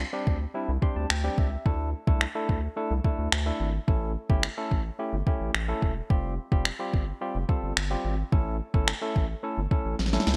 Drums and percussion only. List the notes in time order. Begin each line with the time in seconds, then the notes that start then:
0.27 kick
0.82 kick
1.10 finger snap
1.38 kick
1.66 kick
2.07 kick
2.21 finger snap
2.49 kick
3.04 kick
3.32 finger snap
3.88 kick
4.30 kick
4.43 finger snap
4.71 kick
5.27 kick
5.55 finger snap
5.82 kick
6.10 kick
6.52 kick
6.65 finger snap
6.94 kick
7.49 kick
7.77 finger snap
8.32 kick
8.74 kick
8.88 finger snap
9.16 kick
9.71 kick
9.99 snare
10.06 snare
10.13 snare
10.20 snare
10.27 snare